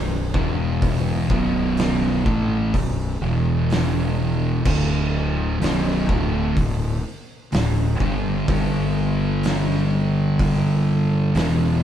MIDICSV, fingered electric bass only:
0, 0, Header, 1, 2, 480
1, 0, Start_track
1, 0, Tempo, 955414
1, 417, Time_signature, 4, 2, 24, 8
1, 5943, End_track
2, 0, Start_track
2, 0, Title_t, "Fingered electric bass"
2, 0, Program_c, 0, 33
2, 0, Note_on_c, 0, 23, 77
2, 160, Note_off_c, 0, 23, 0
2, 171, Note_on_c, 0, 28, 108
2, 635, Note_off_c, 0, 28, 0
2, 653, Note_on_c, 0, 23, 95
2, 1116, Note_off_c, 0, 23, 0
2, 1135, Note_on_c, 0, 33, 99
2, 1360, Note_off_c, 0, 33, 0
2, 1377, Note_on_c, 0, 23, 88
2, 1602, Note_off_c, 0, 23, 0
2, 1614, Note_on_c, 0, 28, 107
2, 2318, Note_off_c, 0, 28, 0
2, 2339, Note_on_c, 0, 26, 93
2, 2800, Note_off_c, 0, 26, 0
2, 2819, Note_on_c, 0, 23, 102
2, 3043, Note_off_c, 0, 23, 0
2, 3062, Note_on_c, 0, 26, 105
2, 3285, Note_off_c, 0, 26, 0
2, 3301, Note_on_c, 0, 26, 72
2, 3524, Note_off_c, 0, 26, 0
2, 3781, Note_on_c, 0, 26, 79
2, 4004, Note_off_c, 0, 26, 0
2, 4021, Note_on_c, 0, 31, 99
2, 4244, Note_off_c, 0, 31, 0
2, 4261, Note_on_c, 0, 31, 93
2, 5681, Note_off_c, 0, 31, 0
2, 5702, Note_on_c, 0, 28, 98
2, 5943, Note_off_c, 0, 28, 0
2, 5943, End_track
0, 0, End_of_file